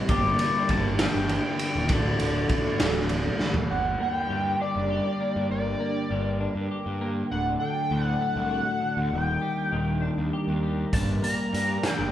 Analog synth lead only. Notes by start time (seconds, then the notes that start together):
0.09 D5
0.40 D5
0.70 A5
1.01 G5
1.62 G5
1.92 D5
3.71 F#5
4.02 G5
4.62 D5
5.51 D5
7.31 F#5
7.59 G5
8.00 F#5
8.21 F#5
9.13 G5
10.93 A5
11.24 A#5
11.84 G5